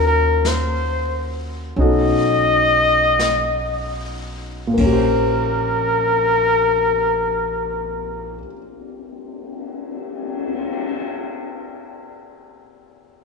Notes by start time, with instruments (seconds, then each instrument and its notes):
Already playing: upright bass D#2, grand piano C#4 F4 F#4 A#4
0.07 trumpet A#4
0.45 trumpet C5, brush sweep, snare, hi-hat pedal
1.76 upright bass B1, grand piano C#4 D#4 F#4, brush sweep
1.80 grand piano A4, trumpet D#5
3.19 brush sweep, snare, hi-hat pedal
4.67 grand piano A#2
4.74 upright bass A#1, grand piano A#3, kick, ride
4.80 grand piano C#4, trumpet A#4
4.86 grand piano G4
4.93 grand piano C5
5.89 cymbal swell